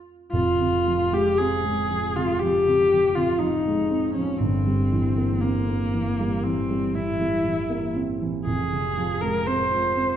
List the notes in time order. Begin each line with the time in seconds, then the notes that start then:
Already playing: F2 F3 A3 C4
0.32 F1 F2 F4
0.61 C3
0.87 F3
1.13 G#3 G4
1.38 C4 G#4
1.64 G#3
1.91 F3
2.16 C3 F4
2.40 F3 G4
2.68 C3
2.93 F3
3.15 C3 F4
3.38 F3 D#4
3.67 G#3
3.90 C4
4.14 F3 C#4
4.38 G1 G2 C4
4.67 G3
4.92 E3
5.17 A#3
5.41 A#3 C4
5.68 A#3
5.93 E3
6.20 G3
6.44 E3 C4
6.70 G3
6.94 E3 E4
7.21 G3
7.45 E3
7.70 A#3
7.96 C4
8.22 E3
8.46 F1 F2 G#4
8.73 C3
8.97 F3
9.21 G#3 A#4
9.47 C4 C5
9.71 F4
9.96 C4